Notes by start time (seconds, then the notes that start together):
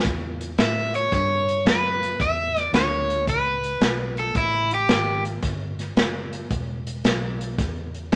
0.04 E2, kick, closed hi-hat
0.41 closed hi-hat
0.58 A2 E5, snare, closed hi-hat
0.94 C#5, closed hi-hat
1.12 G2 C#5, kick, snare, closed hi-hat
1.48 closed hi-hat
1.65 F#2 B4, snare, closed hi-hat
2.03 closed hi-hat
2.20 E2 E5, kick, closed hi-hat
2.56 snare, closed hi-hat
2.73 D2 C#5, snare, closed hi-hat
3.10 closed hi-hat
3.27 C#2 B4, kick, closed hi-hat
3.63 closed hi-hat
3.81 B1, snare, closed hi-hat
4.17 A4, closed hi-hat
4.35 A1 E4, kick, closed hi-hat
4.71 G4, closed hi-hat
4.89 G#1, snare, closed hi-hat
5.25 closed hi-hat
5.42 G1, kick, snare, closed hi-hat
5.79 snare, closed hi-hat
5.96 F#1, snare, closed hi-hat
6.33 closed hi-hat
6.51 E1, kick, closed hi-hat
6.87 closed hi-hat
7.04 B1, snare, closed hi-hat
7.41 closed hi-hat
7.58 E2, kick, snare, closed hi-hat
7.94 closed hi-hat
8.12 G#2, kick, closed hi-hat